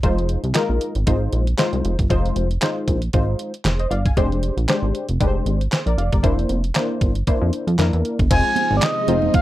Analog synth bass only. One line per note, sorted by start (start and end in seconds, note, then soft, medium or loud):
0.03 0.37 F1 loud
0.44 0.53 C2 medium
0.69 0.79 A#1 medium
0.95 1.05 G#1 medium
1.07 1.29 G#1 medium
1.33 1.54 A#1 medium
1.73 1.82 C2 medium
1.84 1.97 F1 loud
1.99 2.08 G1 medium
2.10 2.32 F1 loud
2.36 2.58 F1 medium
2.88 3.09 A#1 medium
3.14 3.35 G#1 medium
3.65 3.87 F1 medium
3.91 4.13 G1 medium
4.17 4.51 F1 loud
4.57 4.67 A#1 medium
4.83 4.92 G#1 medium
5.09 5.19 F1 medium
5.21 5.42 F1 loud
5.46 5.68 G#1 medium
5.86 5.96 A#1 medium
5.98 6.10 F1 medium
6.12 6.22 G1 medium
6.24 6.46 F1 loud
6.49 6.71 F1 loud
7.01 7.23 G1 medium
7.42 7.51 F2 loud
7.67 7.77 F2 medium
7.79 7.91 F2 loud
7.93 8.03 E2 loud
8.19 8.29 G1 medium
8.31 8.43 F1 loud
8.71 8.80 G#1 loud
9.08 9.30 F1 medium